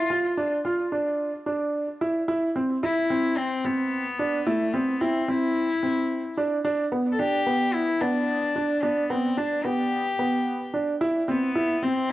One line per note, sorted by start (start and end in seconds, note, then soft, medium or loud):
0.10 0.29 F4 medium
0.37 0.57 D4 medium
0.65 0.84 F4 medium
0.92 1.30 D4 medium
1.46 1.85 D4 medium
2.01 2.20 E4 medium
2.28 2.47 E4 medium
2.56 2.75 C4 medium
2.83 3.02 E4 medium
2.83 3.39 E4 loud
3.10 3.48 C4 medium
3.38 3.66 C4 loud
3.65 4.48 B3 loud
3.65 4.03 C4 medium
4.19 4.38 D4 medium
4.46 4.75 A3 loud
4.46 4.66 E4 medium
4.73 5.02 B3 medium
4.73 4.93 C4 medium
5.01 5.30 C4 loud
5.01 5.20 E4 medium
5.28 5.67 C4 medium
5.28 6.38 E4 loud
5.83 6.21 C4 medium
6.37 6.57 D4 medium
6.65 6.84 D4 loud
6.92 7.11 B3 medium
7.12 7.21 A4 medium
7.19 7.38 D4 medium
7.19 7.75 G4 loud
7.47 7.85 B3 medium
7.74 8.02 E4 loud
8.01 8.39 B3 medium
8.01 8.85 D4 loud
8.56 8.75 D4 medium
8.83 9.11 B3 medium
8.83 9.02 D4 medium
9.10 9.29 B3 medium
9.10 9.39 C4 medium
9.37 9.57 D4 medium
9.37 9.66 D4 medium
9.65 10.03 B3 medium
9.65 10.74 G4 loud
10.19 10.57 B3 medium
10.74 10.93 D4 medium
11.01 11.20 E4 loud
11.28 11.84 B3 loud
11.28 11.47 C4 medium
11.55 11.75 E4 medium
11.83 12.12 C4 medium
11.83 12.12 C4 loud